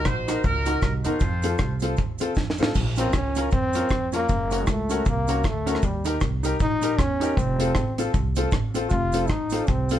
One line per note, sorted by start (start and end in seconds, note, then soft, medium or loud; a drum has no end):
0.05 0.39 A#1 medium
0.05 0.44 D#4 medium
0.05 0.10 F#4 soft
0.05 0.44 F#4 medium
0.05 0.10 A#4 soft
0.05 0.45 C5 loud
0.05 kick loud
0.05 cross-stick loud
0.05 cabasa medium
0.28 0.38 D#4 medium
0.28 0.41 D#4 medium
0.28 0.38 F#4 medium
0.28 0.41 F#4 medium
0.28 0.38 A#4 loud
0.28 0.42 A#4 medium
0.28 cross-stick medium
0.28 closed hi-hat medium
0.28 cabasa medium
0.44 0.77 C#2 medium
0.44 1.18 D#4 medium
0.44 1.18 F#4 medium
0.44 0.80 A#4 loud
0.44 kick loud
0.44 cabasa medium
0.66 0.76 D#4 medium
0.66 0.79 D#4 medium
0.66 0.76 F#4 medium
0.66 0.80 F#4 medium
0.66 0.77 A#4 loud
0.66 0.80 A#4 medium
0.66 closed hi-hat medium
0.66 cabasa medium
0.82 1.02 C2 loud
0.82 0.92 A#4 medium
0.82 kick loud
0.82 cross-stick loud
0.82 cabasa medium
1.04 1.19 E2 medium
1.04 1.15 D#4 medium
1.04 1.18 D#4 medium
1.04 1.78 F4 medium
1.04 1.15 F#4 medium
1.04 1.19 F#4 medium
1.04 1.78 A4 medium
1.04 1.15 A#4 loud
1.04 1.19 A#4 medium
1.04 1.78 C5 medium
1.04 closed hi-hat medium
1.04 cabasa medium
1.20 1.54 F2 loud
1.20 kick loud
1.20 cabasa medium
1.42 1.53 C4 medium
1.42 1.57 C4 medium
1.42 1.54 F4 medium
1.42 1.57 F4 medium
1.42 1.54 A4 loud
1.42 1.57 A4 medium
1.42 closed hi-hat loud
1.42 cabasa medium
1.58 1.92 C2 medium
1.58 1.65 F4 soft
1.58 1.65 A4 soft
1.58 muted clean electric guitar stroke soft
1.58 kick loud
1.58 cross-stick loud
1.58 cabasa medium
1.80 1.92 C4 medium
1.80 1.95 C4 medium
1.80 1.92 F4 medium
1.80 1.96 F4 medium
1.80 1.93 A4 medium
1.80 closed hi-hat medium
1.80 cabasa medium
1.84 1.96 A4 medium
1.97 2.31 D#2 medium
1.97 kick loud
1.97 cabasa medium
2.18 2.30 C4 medium
2.18 2.34 C4 medium
2.18 2.31 F4 medium
2.18 2.34 F4 medium
2.18 2.31 A4 loud
2.18 2.34 A4 loud
2.18 closed hi-hat medium
2.18 cabasa medium
2.35 2.61 F2 medium
2.35 kick loud
2.35 snare medium
2.35 cabasa medium
2.50 snare medium
2.58 2.73 A1 medium
2.58 2.69 C4 medium
2.58 2.73 C4 medium
2.58 2.69 F4 medium
2.58 2.73 F4 medium
2.58 2.70 A4 loud
2.58 2.73 A4 medium
2.58 cabasa medium
2.63 snare loud
2.74 3.08 A#1 loud
2.74 kick loud
2.74 crash medium
2.74 cabasa medium
2.96 3.13 C4 loud
2.96 3.10 C#4 medium
2.96 3.08 C#4 medium
2.96 3.08 F4 medium
2.96 3.11 F4 medium
2.96 3.08 A#4 loud
2.96 3.12 A#4 medium
2.96 closed hi-hat loud
2.96 cabasa medium
3.13 3.47 C#2 medium
3.13 3.51 C#4 loud
3.13 3.19 F4 soft
3.13 3.19 A#4 soft
3.13 kick loud
3.13 cross-stick loud
3.13 cabasa medium
3.35 3.49 C#4 medium
3.35 3.46 C#4 medium
3.35 3.47 F4 medium
3.35 3.50 F4 medium
3.35 3.47 A#4 loud
3.35 3.50 A#4 loud
3.35 closed hi-hat medium
3.35 cabasa medium
3.51 3.85 F2 medium
3.51 4.10 C4 loud
3.51 kick loud
3.51 cabasa medium
3.73 3.85 C#4 medium
3.73 3.88 C#4 medium
3.73 3.85 F4 medium
3.73 3.88 F4 medium
3.73 3.86 A#4 loud
3.73 3.89 A#4 medium
3.73 closed hi-hat medium
3.73 cabasa medium
3.89 4.23 F2 medium
3.89 kick loud
3.89 cross-stick loud
3.89 cabasa medium
4.12 4.63 A#3 loud
4.12 4.26 C#4 medium
4.12 4.23 C#4 medium
4.12 4.26 F4 medium
4.12 4.24 F4 medium
4.12 4.24 A#4 loud
4.12 4.27 A#4 medium
4.12 closed hi-hat medium
4.12 cabasa medium
4.29 4.62 F#1 loud
4.29 kick loud
4.29 cabasa medium
4.51 4.62 C#4 medium
4.51 4.64 C#4 medium
4.51 4.62 F#4 medium
4.51 4.65 F#4 medium
4.51 4.62 A#4 loud
4.51 4.65 A#4 medium
4.51 closed hi-hat medium
4.51 cabasa medium
4.62 4.72 G#3 medium
4.67 5.01 C#2 medium
4.67 4.72 F#4 soft
4.67 4.73 A#4 soft
4.67 kick loud
4.67 cross-stick loud
4.67 cabasa medium
4.71 5.08 A3 medium
4.89 5.03 C#4 medium
4.89 5.00 C#4 medium
4.89 5.03 F#4 medium
4.89 5.01 F#4 medium
4.89 5.01 A#4 loud
4.89 5.04 A#4 medium
4.89 closed hi-hat medium
4.89 cabasa medium
5.05 5.39 C2 medium
5.05 muted clean electric guitar stroke soft
5.05 kick loud
5.05 cabasa medium
5.09 5.49 A#3 medium
5.27 5.39 C#4 medium
5.27 5.42 C#4 medium
5.27 5.39 F#4 medium
5.27 5.42 F#4 medium
5.27 5.39 A#4 loud
5.27 5.42 A#4 medium
5.27 closed hi-hat medium
5.27 cabasa medium
5.44 5.77 D2 loud
5.44 5.86 A3 medium
5.44 kick loud
5.44 cross-stick loud
5.44 cabasa medium
5.66 5.77 C#4 loud
5.66 5.80 C#4 medium
5.66 5.77 F#4 medium
5.66 5.80 F#4 medium
5.66 5.78 A#4 loud
5.66 5.81 A#4 medium
5.66 closed hi-hat medium
5.66 cabasa medium
5.75 cross-stick medium
5.82 6.16 D#2 loud
5.82 6.07 G3 medium
5.82 kick loud
5.82 cabasa medium
6.05 6.18 D#4 medium
6.05 6.16 D#4 medium
6.05 6.19 G4 medium
6.05 6.16 G4 medium
6.05 6.19 A#4 medium
6.05 6.16 A#4 loud
6.05 closed hi-hat loud
6.05 cabasa medium
6.21 6.54 C2 loud
6.21 6.27 G4 soft
6.21 6.27 A#4 soft
6.21 kick loud
6.21 cross-stick loud
6.21 cabasa medium
6.43 6.57 D#4 medium
6.43 6.54 D#4 medium
6.43 6.57 G4 medium
6.43 6.54 G4 medium
6.43 6.58 A#4 medium
6.43 6.55 A#4 loud
6.43 closed hi-hat medium
6.43 cabasa medium
6.60 7.00 A#1 medium
6.60 7.00 D#4 loud
6.60 kick loud
6.60 cabasa medium
6.82 6.95 D#4 medium
6.82 6.93 D#4 medium
6.82 6.93 G4 medium
6.82 6.96 G4 medium
6.82 6.93 A#4 loud
6.82 6.96 A#4 medium
6.82 closed hi-hat medium
6.82 cabasa medium
6.99 7.31 E2 medium
6.99 7.39 C#4 loud
6.99 kick loud
6.99 cross-stick loud
6.99 cabasa medium
7.20 7.34 D#4 medium
7.20 7.31 D#4 medium
7.20 7.34 G4 medium
7.20 7.31 G4 medium
7.20 7.35 A#4 loud
7.20 7.32 A#4 loud
7.20 closed hi-hat medium
7.20 cabasa medium
7.37 7.70 F1 loud
7.37 7.98 C4 medium
7.37 kick loud
7.37 cabasa medium
7.58 7.72 C4 medium
7.58 7.70 C4 medium
7.58 7.73 F4 medium
7.58 7.70 F4 medium
7.58 7.73 A4 medium
7.58 7.70 A4 medium
7.58 closed hi-hat loud
7.58 cabasa medium
7.75 8.09 A1 medium
7.75 7.81 F4 soft
7.75 7.81 A4 soft
7.75 kick loud
7.75 cross-stick loud
7.75 cabasa medium
7.98 8.08 C4 medium
7.98 8.11 C4 medium
7.98 8.09 F4 medium
7.98 8.12 F4 loud
7.98 8.09 A4 loud
7.98 8.12 A4 medium
7.98 closed hi-hat medium
7.98 cabasa medium
8.14 8.47 C2 loud
8.14 kick loud
8.14 cabasa medium
8.35 8.47 C4 medium
8.35 8.50 C4 medium
8.35 8.47 F4 medium
8.35 8.50 F4 medium
8.35 8.47 A4 loud
8.35 8.51 A4 medium
8.35 closed hi-hat medium
8.35 cabasa medium
8.51 8.86 A1 medium
8.51 kick loud
8.51 cross-stick loud
8.51 cabasa medium
8.74 8.88 C4 medium
8.74 8.85 C4 medium
8.74 8.88 F4 medium
8.74 8.85 F4 medium
8.74 8.86 A4 loud
8.74 8.88 A4 medium
8.74 closed hi-hat medium
8.74 cabasa medium
8.90 9.24 F1 loud
8.90 9.30 F4 loud
8.90 kick loud
8.90 cabasa medium
9.12 9.23 C4 medium
9.12 9.27 C4 medium
9.12 9.24 F4 medium
9.12 9.27 F4 medium
9.12 9.24 A4 loud
9.12 9.27 A4 medium
9.12 closed hi-hat medium
9.12 cabasa medium
9.27 9.62 A1 medium
9.27 9.70 D#4 medium
9.27 kick loud
9.27 cross-stick loud
9.27 cabasa medium
9.50 9.62 C4 medium
9.50 9.65 C4 medium
9.50 9.65 F4 medium
9.50 9.63 F4 medium
9.50 9.63 A4 loud
9.50 9.66 A4 medium
9.50 closed hi-hat medium
9.50 cabasa medium
9.67 9.99 C2 loud
9.67 9.99 C4 medium
9.67 kick loud
9.67 cabasa medium
9.89 9.99 C4 medium
9.89 9.99 F4 medium
9.89 9.99 A4 loud
9.89 9.99 A4 medium
9.89 closed hi-hat medium
9.89 cabasa medium